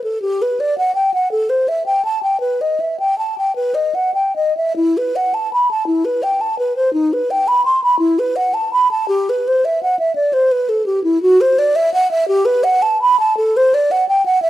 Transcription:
0.04 A4
0.22 G4
0.42 B4
0.60 D5
0.78 F#5
0.95 G5
1.14 F#5
1.32 A4
1.50 C5
1.68 E5
1.86 G5
2.05 A5
2.23 G5
2.40 B4
2.61 D#5
2.80 E5
3.00 G5
3.18 A5
3.38 G5
3.56 B4
3.75 D#5
3.95 F#5
4.14 G5
4.36 D#5
4.57 E5
4.76 E4
4.97 B4
5.16 F#5
5.34 A5
5.53 B5
5.71 A5
5.87 E4
6.05 B4
6.23 G5
6.41 A5
6.59 B4
6.76 C5
6.93 D#4
7.13 B4
7.31 G5
7.48 B5
7.65 C6
7.84 B5
7.99 E4
8.19 B4
8.36 F#5
8.54 A5
8.73 B5
8.91 A5
9.08 G4
9.29 B4
9.48 C5
9.65 E5
9.83 F#5
9.99 E5
10.16 D5
10.33 C5
10.52 B4
10.69 A4
10.86 G4
11.04 E4
11.22 F#4
11.41 C5
11.59 D5
11.76 E5
11.94 F#5
12.11 E5
12.28 G4
12.45 B4
12.64 F#5
12.82 A5
13.02 B5
13.20 A5
13.37 A4
13.57 C5
13.74 D5
13.91 F#5
14.09 G5
14.26 F#5
14.42 E5

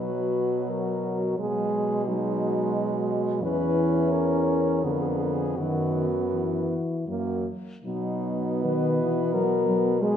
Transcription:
Already playing: B2 F#3 B4
0.70 A#4
1.38 B2 F#3 G#3 G#4
2.06 F#3 G#3 D#4
3.42 E2 E3 C#4 B4
4.11 A#4
4.83 F2 D3 B3 G#4
4.91 A#4
5.00 G#4
5.08 A#4
5.16 G#4
5.23 A#4
5.33 G#4
5.58 F#2 D#3 B3 F#4
6.34 E3
7.08 F#2 F#3 A#3
7.85 B2 F#3 B3 D#4
8.64 D#3 B4
9.00 E3
9.34 F#3 A#4
9.69 F#3
10.00 G#3 G#4

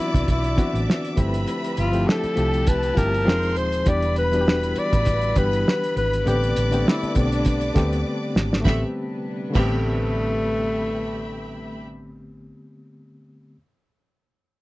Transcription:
Already playing: D3 E3 F#3 B3 C4 D4 E4 F4 F#4 B4 D5 E5 D6
0.14 C2, kick, closed hi-hat
0.28 B1 E4, kick, closed hi-hat
0.44 closed hi-hat
0.56 E3 B3 C4 D4 F#4, kick, closed hi-hat
0.74 A1, closed hi-hat
0.90 snare
1.05 closed hi-hat
1.16 G1 F3 G3 A3 C4 E4 G4 B4 B5, kick, closed hi-hat
1.34 closed hi-hat
1.48 closed hi-hat
1.64 closed hi-hat
1.77 G1 F4, closed hi-hat
1.92 F3 A3 C4 E4 G4, closed hi-hat
2.06 G4 A4 A5, snare
2.24 muted fingered electric bass stroke, closed hi-hat
2.35 C2 F3 A3 C4 E4 G4, closed hi-hat
2.54 closed hi-hat
2.67 B4, kick, closed hi-hat
2.83 closed hi-hat
2.95 G1 F3 G3 C4 E4 G4 A#4, kick, closed hi-hat
3.14 closed hi-hat
3.25 F1 D#3 F3 G#3 C4 D#4 G#4 C5 C6, snare
3.43 closed hi-hat
3.56 D#1 C5, closed hi-hat
3.72 closed hi-hat
3.85 E1 D3 E3 G3 B3 D4 E4 G4 B4 D5 B5, kick, closed hi-hat
4.02 closed hi-hat
4.16 B4, closed hi-hat
4.32 E3 G3 B3 D4 F#4, closed hi-hat
4.41 G4
4.48 snare
4.63 closed hi-hat
4.76 D5, muted fingered electric bass stroke, closed hi-hat
4.93 A1, kick, closed hi-hat
5.05 kick, closed hi-hat
5.22 closed hi-hat
5.36 G1 E3 G3 B3 D4 G4 B4, kick, closed hi-hat
5.53 closed hi-hat
5.68 snare
5.84 closed hi-hat
5.96 G#1 B4, closed hi-hat
6.13 closed hi-hat
6.25 A1 D3 A3 B3 C4 D4 G4 B4 D5 D6, closed hi-hat
6.43 closed hi-hat
6.56 A1, closed hi-hat
6.71 D3 A3 B3 C4 G4, closed hi-hat
6.88 E4, snare
7.03 muted fingered electric bass stroke, closed hi-hat
7.14 B1 D3 A3 B3 C4 D4 G4, kick, closed hi-hat
7.32 closed hi-hat
7.45 kick, closed hi-hat
7.61 closed hi-hat
7.75 D2 D3 A3 B3 C4 G4, kick, snare, closed hi-hat
7.93 closed hi-hat
8.35 G#1, snare
8.53 snare
8.60 D3 A3
8.64 A1 C3 G3 A3 B3 C4 D4 G4 B4 E5 B5, kick, snare
8.69 G4
9.50 D3 A3
9.55 A1 A3 B3 C4 G4 E5 B5, kick, crash
9.60 G4

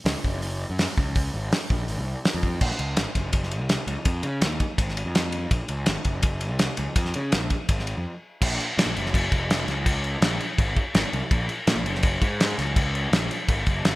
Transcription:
0.05 C#2, snare, open hi-hat
0.24 F#1, kick
0.42 open hi-hat
0.70 F#2
0.79 snare, open hi-hat
0.97 C#2, kick
1.15 kick, open hi-hat
1.34 G#1
1.52 snare, open hi-hat
1.70 A#1, kick
1.88 G#1, open hi-hat
1.98 C2
2.25 snare, open hi-hat
2.34 F2
2.43 kick
2.61 A#1, kick, crash
2.71 snare
2.79 C#2, ride
2.97 G#1, snare, ride
3.15 F#1, kick, ride
3.33 kick, ride
3.43 snare
3.51 ride
3.60 C2
3.69 snare, ride
3.87 C#2, ride
4.05 F2, kick, ride
4.23 C#3, ride
4.41 D#2, snare, ride
4.60 kick, ride
4.78 G#1, kick, ride
4.89 snare
4.97 ride
5.05 F2
5.15 snare, ride
5.32 ride
5.51 A#1, kick, ride
5.68 C#2, ride
5.86 G#1, snare, ride
6.05 F#1, kick, ride
6.23 kick, ride
6.41 ride
6.51 C2
6.59 snare, ride
6.77 C#2, ride
6.96 F2, kick, ride
7.05 snare
7.14 C#3, ride
7.32 A#1, snare, ride
7.50 kick, ride
7.69 G#1, kick, ride
7.79 snare
7.87 ride
7.97 F2
8.42 A#1, kick, crash
8.60 crash
8.78 A#2, snare, crash
8.86 A#1
8.96 F#1, crash
9.05 snare
9.14 kick, crash
9.32 F1, kick, crash
9.50 snare, crash
9.67 C#2, snare, crash
9.86 kick, crash
10.04 crash
10.21 A#1, snare, crash
10.40 crash
10.58 G#1, kick, crash
10.76 kick, crash
10.94 G#1, snare, crash
11.13 C2, crash
11.31 A#1, kick, crash
11.49 crash
11.67 A#2, snare, crash
11.76 A#1
11.84 F#1, crash
11.95 snare
12.03 kick, crash
12.21 G#2, kick, crash
12.40 snare, crash
12.58 C#2, snare, crash
12.76 kick, crash
12.95 crash
13.12 A#1, snare, crash
13.31 crash
13.48 G#1, kick, crash
13.66 F#1, kick, crash
13.85 G#1, snare, crash

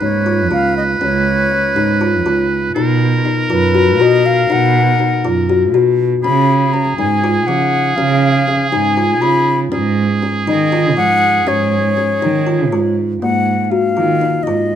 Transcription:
Already playing: B4
0.00 G#2 D#4 C#5
0.26 F4
0.50 C#2 F4 F5
0.77 D#5
1.00 C#2 C#4 C#5
1.51 C#4
1.75 G#2 D#4
2.01 F4
2.25 C#2 F4
2.74 B2 D#4 A#4
3.25 D#4
3.49 F#2 F4 B4
3.75 F#4
3.99 B2 F#4 D#5
4.26 F5
4.49 B2 D#4 F#5
5.00 D#4
5.24 F#2 F4
5.49 F#4
5.73 B2 F#4
6.23 C#3 C#4 G#4 B5
6.73 C#4 A#5
6.98 G#2 D#4 G#5
7.24 F4
7.47 C#3 F3 F#5
7.96 C#3 C#4 F5
8.48 C#4
8.71 G#2 D#4 G#5
8.97 F4
9.21 C#3 F4 B5
9.72 G#2 C#4 G#4
10.23 C#4
10.47 D#3 D#4 D#5
10.72 F4
10.97 G#2 F3 F#5
11.46 G#2 C#4 C#5
11.97 C#4
12.21 D#3 D#4
12.47 F4
12.72 G#2 F4
13.22 G#2 A#3 F#5
13.64 F#5
13.70 F#4 F5
13.97 D#3 F4
14.21 D#4
14.43 G#2 F4 D#5

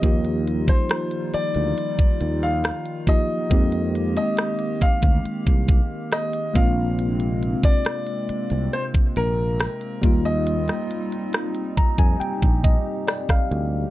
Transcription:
Already playing: D#5
0.01 D#2 D#3 F3 G3 A#3 D#4 F4, kick, closed hi-hat
0.06 G4
0.25 closed hi-hat
0.48 closed hi-hat
0.68 C5, kick, closed hi-hat
0.90 cross-stick, closed hi-hat
1.11 closed hi-hat
1.34 D5, muted fretless electric bass stroke, closed hi-hat
1.55 D2, closed hi-hat
1.78 closed hi-hat
1.99 muted fretless electric bass stroke, kick, closed hi-hat
2.21 D#2, closed hi-hat
2.43 F5
2.64 cross-stick, closed hi-hat
2.86 closed hi-hat
3.07 F3 A#3 D#4 F4 G4 D#5, kick, closed hi-hat
3.50 F2 G#3 A#3 C4 D#4 G4, kick, closed hi-hat
3.72 closed hi-hat
3.95 closed hi-hat
4.17 D#5, closed hi-hat
4.37 cross-stick, closed hi-hat
4.59 closed hi-hat
4.81 F5, muted fretless electric bass stroke, kick, closed hi-hat
5.02 D2, kick, closed hi-hat
5.25 muted fretless electric bass stroke, closed hi-hat
5.47 C2, kick, closed hi-hat
5.68 kick, closed hi-hat
6.12 D#5, cross-stick, closed hi-hat
6.33 closed hi-hat
6.53 A#1 C3 G#3 A#3 C4 D4 F4 F5, kick, closed hi-hat
6.99 closed hi-hat
7.20 closed hi-hat
7.43 closed hi-hat
7.63 D5, kick, closed hi-hat
7.85 cross-stick, closed hi-hat
8.07 closed hi-hat
8.29 muted fretless electric bass stroke, closed hi-hat
8.50 C2, closed hi-hat
8.73 C5, closed hi-hat
8.94 muted fretless electric bass stroke, kick, closed hi-hat
9.16 A#1 A#4, closed hi-hat
9.60 cross-stick, closed hi-hat
9.81 closed hi-hat
10.02 D#2 G3 A#3 D#4 F4, kick, closed hi-hat
10.25 D#5
10.47 closed hi-hat
10.68 cross-stick, closed hi-hat
10.91 closed hi-hat
11.12 closed hi-hat
11.33 cross-stick, closed hi-hat
11.55 closed hi-hat
11.77 G4 A#5, muted fretless electric bass stroke, kick, closed hi-hat
11.98 F2 G#5, kick, closed hi-hat
12.20 G5, muted fretless electric bass stroke, closed hi-hat
12.42 A#1, kick, closed hi-hat
12.64 D#5, kick, closed hi-hat
13.07 D5, cross-stick, closed hi-hat
13.29 F5, kick, cross-stick, closed hi-hat
13.51 D2, closed hi-hat

